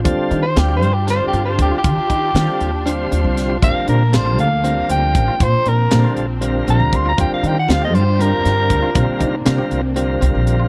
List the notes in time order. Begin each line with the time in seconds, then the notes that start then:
Already playing: D4
0.04 D#2 D3 G3 C4 F4 G4 A4, kick, closed hi-hat
0.18 muted upright bass stroke
0.31 D#3 D#4, closed hi-hat
0.42 C5
0.56 D2 D3 G3 C4 F4 G4, snare, closed hi-hat
0.69 G4
0.77 C5
0.82 G2, closed hi-hat
0.94 G4
1.07 D3 G3 C4 D4 F4 A4 C5, snare, closed hi-hat
1.21 muted upright bass stroke
1.28 G4
1.33 G2 D4, closed hi-hat
1.45 C5
1.59 D2 G4, kick, closed hi-hat
1.71 F4, muted upright bass stroke
1.78 G4
1.84 D#3 F4, kick, closed hi-hat
1.96 muted upright bass stroke
2.10 D#3 D#4, kick, closed hi-hat
2.35 D3 D#3 G3 C4 F4 A4, snare, closed hi-hat
2.48 G4, muted upright bass stroke
2.61 D#2, closed hi-hat
2.85 D3 G3 C4 D4 F4 C5, closed hi-hat
3.12 D#2 D4, closed hi-hat
3.24 C2
3.37 snare, closed hi-hat
3.50 F4
3.62 A#1 D3 F3 G3 A#3 C4 F4 A#4 F5, kick, closed hi-hat
3.75 muted upright bass stroke
3.88 A#2 D4 A#4, closed hi-hat
4.12 A1 D3 G3 C4 F4 A4 C5, snare, closed hi-hat
4.26 F4
4.38 D2 F5, closed hi-hat
4.64 D3 G3 C4 F4 A#4, closed hi-hat
4.77 muted upright bass stroke
4.89 D2 C4 G5, closed hi-hat
5.15 A1, kick, closed hi-hat
5.28 F4, muted upright bass stroke
5.39 A#2 C4 F4, kick, closed hi-hat
5.43 C5
5.54 muted upright bass stroke
5.66 A#2 D4 A#4, closed hi-hat
5.90 A#2 D3 G3 C4 F4 A4, snare, closed hi-hat
6.04 F4, muted upright bass stroke
6.16 A#1, closed hi-hat
6.41 D3 G3 C4 F4 A#4, closed hi-hat
6.67 A#1 C4 A#5, closed hi-hat
6.80 D2
6.93 C6, kick, closed hi-hat
7.06 F4 A#5
7.17 D#2 D3 G3 C4 D4 F4 G4 A#4 G5, kick, closed hi-hat
7.31 F5, muted upright bass stroke
7.43 D#3 D#4, closed hi-hat
7.48 G5
7.59 F#5
7.68 D2 D3 G3 C4 F4 A4 F5, snare, closed hi-hat
7.82 G4 D#5
7.94 G2 C5, closed hi-hat
8.19 D3 G3 C4 D4 F4 A#4, closed hi-hat
8.32 muted upright bass stroke
8.44 G2 D4, snare, closed hi-hat
8.70 D2, kick, closed hi-hat
8.82 F4, muted upright bass stroke
8.94 C2 C3 D3 G3 A#3 C4 F4 A#4, kick, closed hi-hat
9.09 muted upright bass stroke
9.20 C3 D#4, kick, closed hi-hat
9.45 C3 D3 G3 C4 F4 A#4, snare, closed hi-hat
9.58 G4, muted upright bass stroke
9.71 C2, closed hi-hat
9.96 D3 G3 C4 F4 A#4, closed hi-hat
10.21 C2 C4, closed hi-hat
10.35 A#1
10.47 closed hi-hat
10.60 F4